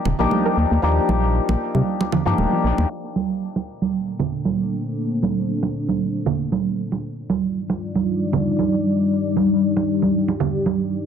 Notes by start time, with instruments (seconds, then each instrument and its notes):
Already playing: synth stab F3 A#3 D4 D#4 G4
0.05 fm bass D#1, muted conga, low conga
0.19 fm bass A#1, synth stab F3 A#3 D4 D#4 G4, synth arpeggio sound A#3
0.31 synth arpeggio sound A3, high conga
0.46 synth arpeggio sound A#4
0.57 fm bass D#2, synth arpeggio sound A#3
0.71 fm bass D#2, synth arpeggio sound A#3
0.82 fm bass D#2, synth stab F3 A#3 D4 D#4 G4
1.09 fm bass A#1, synth arpeggio sound A#3, high conga
1.49 fm bass A#1, synth arpeggio sound A#3, muted conga
1.75 fm bass C3, high conga
2.01 muted conga
2.12 synth arpeggio sound F3, low conga
2.26 fm bass G2, synth stab F3 A#3 D4 D#4 G4, synth arpeggio sound F3
2.38 fm bass D#1, synth arpeggio sound A3, high conga
2.52 synth arpeggio sound F3
2.64 fm bass A#1, synth arpeggio sound A#3
2.78 fm bass D#2, synth arpeggio sound A#3, muted conga
2.90 analog synth pad A#3 D4 A4 C5
3.16 high conga
3.56 muted conga
3.82 high conga
4.19 muted conga, low conga
4.45 high conga
5.23 high conga
5.63 muted conga
5.89 high conga
6.26 low conga
6.52 high conga
6.92 muted conga
7.04 analog synth pad G3 D#4 F4 D5
7.30 high conga
7.70 muted conga
7.95 high conga
8.33 muted conga, low conga
8.59 high conga
9.11 analog synth pad G4
9.37 high conga
9.77 muted conga
10.02 high conga
10.28 muted conga
10.40 low conga
10.66 high conga